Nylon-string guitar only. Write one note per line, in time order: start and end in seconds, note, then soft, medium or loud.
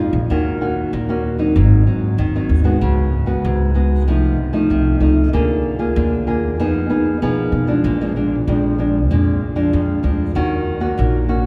0.00 0.27 F2 medium
0.00 0.19 G#3 medium
0.00 0.19 D#4 medium
0.00 0.19 F4 medium
0.30 0.90 D#3 medium
0.30 0.57 A#3 soft
0.30 0.57 C#4 medium
0.30 0.57 F#4 medium
0.61 0.91 A#3 medium
0.61 0.91 C#4 medium
0.61 0.91 F#4 medium
0.93 1.53 A#2 soft
1.09 1.35 A#3 medium
1.09 1.36 C#4 medium
1.09 1.36 F#4 medium
1.38 1.82 F#3 medium
1.38 1.82 C4 medium
1.38 1.82 D#4 medium
1.56 2.16 G#2 medium
1.86 2.16 F#3 soft
1.86 2.17 C4 medium
1.86 2.17 D#4 medium
2.18 2.78 D#3 medium
2.35 2.61 F#3 medium
2.35 2.62 C4 medium
2.35 2.62 D#4 medium
2.64 3.07 G#3 medium
2.64 3.07 B3 medium
2.64 3.08 F#4 medium
2.81 3.41 C#3 medium
3.26 3.70 G#3 medium
3.26 3.70 B3 medium
3.26 3.70 F#4 medium
3.45 4.04 G#2 soft
3.75 4.02 G#3 medium
3.75 4.02 B3 medium
3.75 4.02 F#4 medium
4.08 4.67 C3 medium
4.08 4.37 F3 medium
4.08 4.37 A3 medium
4.08 4.37 D#4 medium
4.53 4.96 F3 medium
4.53 4.96 A3 medium
4.53 4.96 D#4 medium
4.71 5.30 C3 soft
5.01 5.28 F3 medium
5.01 5.28 A3 medium
5.01 5.28 D#4 medium
5.33 5.93 D3 medium
5.33 5.75 A#3 medium
5.33 5.76 F4 medium
5.33 5.76 G#4 medium
5.79 6.22 A#3 medium
5.79 6.22 F4 medium
5.79 6.22 G#4 medium
5.96 6.56 D3 medium
6.27 6.56 A#3 soft
6.27 6.56 F4 medium
6.27 6.57 G#4 medium
6.60 7.19 F3 medium
6.60 6.86 B3 medium
6.60 6.86 D#4 medium
6.60 6.86 G#4 medium
6.89 7.16 B3 medium
6.89 7.17 D#4 medium
6.89 7.17 G#4 medium
7.22 7.66 F3 medium
7.22 7.51 B3 medium
7.22 7.52 D#4 medium
7.22 7.52 G#4 medium
7.67 8.00 F3 medium
7.67 8.01 G#3 medium
7.67 8.01 D4 medium
7.85 8.45 A#2 medium
8.01 8.12 F3 medium
8.01 8.12 G#3 medium
8.01 8.12 D4 medium
8.16 8.35 F3 medium
8.16 8.35 G#3 medium
8.16 8.35 D4 medium
8.48 9.08 F2 medium
8.48 8.74 F3 soft
8.48 8.74 G#3 medium
8.48 8.75 D4 medium
8.78 8.97 F3 soft
8.78 8.98 G#3 medium
8.78 8.98 D4 medium
9.11 9.70 A#2 medium
9.11 9.40 F3 soft
9.11 9.40 G#3 medium
9.11 9.41 D4 medium
9.56 9.99 F3 medium
9.56 9.99 G#3 medium
9.56 9.99 D4 medium
9.73 10.33 F2 medium
10.03 10.33 F3 medium
10.03 10.33 G#3 medium
10.03 10.33 D4 medium
10.35 10.95 D#3 medium
10.35 10.78 A#3 soft
10.35 10.78 C#4 medium
10.35 10.78 F#4 medium
10.80 11.24 A#3 medium
10.80 11.24 C#4 medium
10.80 11.24 F#4 medium
10.98 11.46 A#2 soft
11.29 11.46 A#3 medium
11.29 11.46 C#4 soft
11.29 11.46 F#4 medium